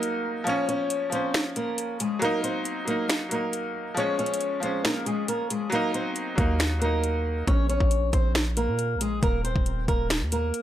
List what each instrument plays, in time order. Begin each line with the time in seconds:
Already playing: grand piano F#3 A#3 D#4, steel-string acoustic guitar A#3 A#4
0.03 closed hi-hat
0.44 grand piano F3 A#3, steel-string acoustic guitar C#4 C#5, closed hi-hat
0.49 grand piano C#4
0.69 steel-string acoustic guitar C#4 C#5, closed hi-hat
0.90 closed hi-hat
1.10 grand piano F3 A#3, steel-string acoustic guitar C4 C5, closed hi-hat
1.15 grand piano C#4
1.34 finger snap, snare
1.56 steel-string acoustic guitar A#3 A#4, closed hi-hat
1.78 closed hi-hat
2.00 steel-string acoustic guitar G#3 G#4, closed hi-hat
2.19 grand piano F#3 A#3, steel-string acoustic guitar A#3 A#4, closed hi-hat
2.25 grand piano D#4
2.44 steel-string acoustic guitar C4 C5, closed hi-hat
2.65 closed hi-hat
2.85 grand piano F#3 A#3, steel-string acoustic guitar A#3 A#4, closed hi-hat
2.90 grand piano D#4
3.09 finger snap, snare, closed hi-hat
3.29 grand piano F#3 A#3, steel-string acoustic guitar A#3 A#4, closed hi-hat
3.34 grand piano D#4
3.53 closed hi-hat
3.94 grand piano F3 G#3, steel-string acoustic guitar C#4 C#5, closed hi-hat
4.00 grand piano C#4
4.19 steel-string acoustic guitar C#4 C#5, closed hi-hat
4.26 closed hi-hat
4.34 closed hi-hat
4.41 closed hi-hat
4.60 grand piano F3 G#3, steel-string acoustic guitar C4 C5, closed hi-hat
4.65 grand piano C#4
4.85 steel-string acoustic guitar A#3 A#4, finger snap, snare
5.06 steel-string acoustic guitar G#3 G#4, closed hi-hat
5.28 steel-string acoustic guitar A#3 A#4, closed hi-hat
5.50 steel-string acoustic guitar G#3 G#4, closed hi-hat
5.70 grand piano F#3 A#3, steel-string acoustic guitar A#3 A#4, closed hi-hat
5.75 grand piano D#4
5.94 steel-string acoustic guitar C4 C5, closed hi-hat
6.16 closed hi-hat
6.35 808-style bass D#2, grand piano F#3 A#3, steel-string acoustic guitar A#3 A#4, kick, closed hi-hat
6.41 grand piano D#4
6.60 finger snap, snare, closed hi-hat
6.79 grand piano F#3 A#3, steel-string acoustic guitar A#3 A#4, closed hi-hat
6.85 grand piano D#4
7.04 closed hi-hat
7.47 808-style bass A#1, steel-string acoustic guitar C#4 C#5, kick, closed hi-hat
7.69 steel-string acoustic guitar C#4 C#5, closed hi-hat
7.80 808-style bass A#1, kick
7.91 closed hi-hat
8.13 808-style bass A#1, steel-string acoustic guitar C4 C5, kick, closed hi-hat
8.35 finger snap, snare
8.57 steel-string acoustic guitar A#3 A#4, closed hi-hat
8.68 808-style bass A#2
8.79 closed hi-hat
8.95 808-style bass A#1
9.01 steel-string acoustic guitar G#3 G#4, closed hi-hat
9.23 808-style bass D#1, steel-string acoustic guitar A#3 A#4, kick, closed hi-hat
9.44 steel-string acoustic guitar C4 C5, closed hi-hat
9.56 808-style bass D#1, kick
9.66 closed hi-hat
9.88 808-style bass D#1, steel-string acoustic guitar A#3 A#4, kick, closed hi-hat
10.10 finger snap, snare, closed hi-hat
10.21 808-style bass D#2
10.32 steel-string acoustic guitar A#3 A#4, closed hi-hat
10.54 closed hi-hat